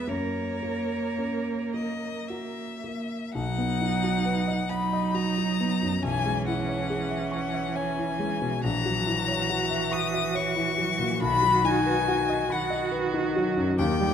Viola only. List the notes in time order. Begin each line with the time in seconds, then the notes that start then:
0.07 A#3
3.33 D#4
4.68 D#4
6.03 C#4
8.64 F#4
11.21 F#4
12.51 F#4
13.79 G4